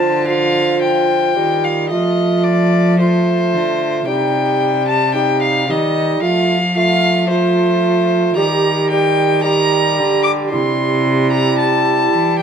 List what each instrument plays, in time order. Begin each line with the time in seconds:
Already playing: cello D3, bassoon F3, recorder F4, violin A5
0.27 bassoon F3, recorder F4, violin F5
0.82 violin G5
1.36 cello D#3, bassoon G3
1.64 violin F5
1.89 cello F3, bassoon A3, recorder F4, violin D#5
2.43 violin D5
2.99 bassoon A3, recorder F4, violin C5
3.53 cello D3
4.06 cello C3, bassoon G3, recorder D#4, violin G5
4.88 violin A5
5.14 bassoon G3, recorder D#4, violin G5
5.42 violin F5
5.68 cello D#3, bassoon G3, recorder D#4, violin D#5
6.22 cello F3, bassoon A3, recorder F4, violin F5
6.75 bassoon A3, recorder F4, violin F5
7.29 bassoon A3, recorder F4, violin C5
8.37 cello D#3, bassoon G3, recorder G4, violin A#5
8.90 bassoon G3, recorder G4, violin G5
9.44 bassoon G3, recorder G4, violin A#5
9.99 cello D3
10.23 violin D6
10.51 cello C3, bassoon G3, recorder E4, violin C6
11.31 violin A#5
11.59 violin A5
12.14 cello E3
12.39 violin G5